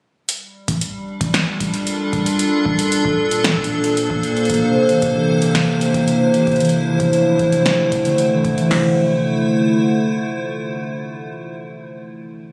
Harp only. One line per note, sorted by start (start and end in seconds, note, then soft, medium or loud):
4.50 5.41 A#3 medium
4.63 6.06 C3 medium
4.89 6.13 E3 medium
5.15 6.65 G3 medium
5.42 5.94 A#3 loud
5.68 8.68 C4 medium
5.94 7.19 A#3 medium
6.08 6.65 C3 medium
6.34 6.59 E3 medium
6.60 7.57 E3 medium
6.87 7.38 F3 loud
7.13 7.21 A3 medium
7.39 7.57 F3 medium
7.52 7.84 C3 medium
7.79 7.97 D3 medium
7.92 8.10 C3 medium
8.05 8.76 D3 loud
8.31 8.76 E3 medium
8.58 8.76 F3 medium
8.71 8.95 C3 medium